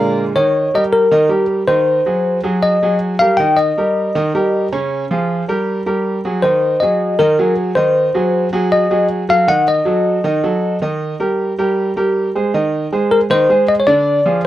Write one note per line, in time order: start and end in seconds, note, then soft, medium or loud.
0.00 0.31 A#2 medium
0.00 0.32 D3 medium
0.00 0.32 G#3 medium
0.00 0.23 A#4 medium
0.00 0.23 D5 medium
0.00 0.23 F5 medium
0.00 0.23 A#5 loud
0.36 0.67 D#3 medium
0.36 0.67 D#4 medium
0.36 0.74 C#5 medium
0.36 0.67 D#5 medium
0.74 1.05 G3 medium
0.74 1.05 G4 medium
0.74 1.05 A#4 medium
0.74 0.83 D#5 medium
0.93 1.45 A#4 medium
1.11 1.27 D#3 medium
1.11 1.27 D#4 medium
1.11 1.27 D#5 loud
1.29 1.61 G3 medium
1.29 1.61 G4 medium
1.29 1.61 A#4 medium
1.68 1.99 D#3 medium
1.68 1.99 D#4 medium
1.68 2.40 C5 medium
1.68 1.99 D#5 medium
2.06 2.37 F#3 medium
2.06 2.37 F#4 medium
2.06 2.37 G#4 medium
2.43 2.75 F#3 medium
2.43 2.75 F#4 medium
2.43 2.75 G#4 medium
2.62 2.98 D#5 medium
2.82 3.13 F#3 medium
2.82 3.14 F#4 medium
2.82 3.14 G#4 medium
3.19 3.36 G3 medium
3.19 3.36 G4 medium
3.19 3.36 A#4 medium
3.19 3.37 F5 loud
3.37 3.70 D#3 medium
3.37 3.71 D#4 medium
3.37 3.71 D#5 medium
3.37 3.58 G5 loud
3.57 4.67 D#5 medium
3.77 4.08 G3 medium
3.77 4.09 G4 medium
3.77 4.09 A#4 medium
4.15 4.31 D#3 medium
4.15 4.31 D#4 medium
4.15 4.31 D#5 medium
4.34 4.65 G3 medium
4.34 4.66 G4 medium
4.34 4.66 A#4 medium
4.72 5.03 C#3 medium
4.72 5.04 C#4 medium
4.72 5.04 C#5 medium
5.11 5.42 F3 medium
5.11 5.42 F4 medium
5.11 5.42 G#4 medium
5.48 5.80 G3 medium
5.48 5.80 G4 medium
5.48 5.80 A#4 medium
5.86 6.17 G3 medium
5.86 6.18 G4 medium
5.86 6.18 A#4 medium
6.25 6.40 F#3 medium
6.25 6.40 F#4 medium
6.25 6.41 G#4 medium
6.42 6.74 D#3 medium
6.42 6.75 D#4 medium
6.42 6.82 C5 medium
6.42 6.75 D#5 medium
6.80 7.13 F#3 medium
6.80 7.13 F#4 medium
6.80 7.13 G#4 medium
6.80 7.20 D#5 medium
7.19 7.35 D#3 medium
7.19 7.35 D#4 medium
7.19 7.55 A#4 medium
7.19 7.35 D#5 medium
7.39 7.70 F#3 medium
7.39 7.70 F#4 medium
7.39 7.70 G#4 medium
7.75 8.08 D#3 medium
7.75 8.08 D#4 medium
7.75 8.48 C5 medium
7.75 8.08 D#5 medium
8.14 8.46 F#3 medium
8.14 8.46 F#4 medium
8.14 8.46 G#4 medium
8.53 8.84 F#3 medium
8.53 8.84 F#4 medium
8.53 8.85 G#4 medium
8.72 9.08 D#5 loud
8.90 9.22 F#3 medium
8.90 9.22 F#4 medium
8.90 9.22 G#4 medium
9.29 9.45 F#3 medium
9.29 9.45 F#4 medium
9.29 9.45 A4 medium
9.29 9.49 F5 loud
9.47 9.79 D#3 medium
9.47 9.79 D#4 medium
9.47 9.79 D#5 medium
9.47 9.66 F#5 loud
9.68 10.78 D#5 medium
9.85 10.17 F#3 medium
9.85 10.17 F#4 medium
9.85 10.18 A4 medium
10.24 10.40 D#3 medium
10.24 10.40 D#4 medium
10.24 10.40 D#5 medium
10.44 10.75 F#3 medium
10.44 10.75 F#4 medium
10.44 10.75 A4 medium
10.82 11.13 D#3 medium
10.82 11.13 D#4 medium
10.82 11.14 D#5 medium
11.20 11.51 G3 medium
11.20 11.51 G4 medium
11.20 11.51 A#4 medium
11.59 11.90 G3 medium
11.59 11.90 G4 medium
11.59 11.90 A#4 medium
11.96 12.28 G3 medium
11.96 12.28 G4 medium
11.96 12.28 A#4 medium
12.35 12.51 G#3 medium
12.35 12.51 G#4 medium
12.35 12.51 C5 medium
12.54 12.85 D#3 medium
12.54 12.85 D#4 medium
12.54 12.85 D#5 medium
12.92 13.23 G#3 medium
12.92 13.23 G#4 medium
12.92 13.24 C5 medium
13.11 13.20 A#4 medium
13.30 13.46 D#3 medium
13.30 13.46 D#4 medium
13.30 13.66 C5 loud
13.30 13.46 D#5 medium
13.49 13.80 G#3 medium
13.49 13.81 G#4 medium
13.49 13.81 C5 medium
13.68 13.74 D#5 loud
13.80 13.87 C#5 medium
13.87 14.19 D3 medium
13.87 14.19 D4 medium
13.87 14.40 D5 loud
13.87 14.19 D5 medium
14.26 14.47 F3 medium
14.26 14.47 F4 medium
14.26 14.47 G#4 medium